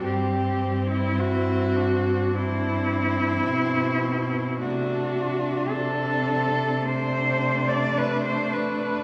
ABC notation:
X:1
M:4/4
L:1/16
Q:1/4=53
K:Clyd
V:1 name="Cello"
G3 E F4 E8 | F4 A4 c3 d B c B2 |]
V:2 name="Cello"
C8 C8 | D4 D4 D8 |]
V:3 name="Cello"
G,4 E2 D6 C2 B,2 | A,2 D2 C4 A,8 |]
V:4 name="Cello" clef=bass
G,,12 B,,4 | C,16 |]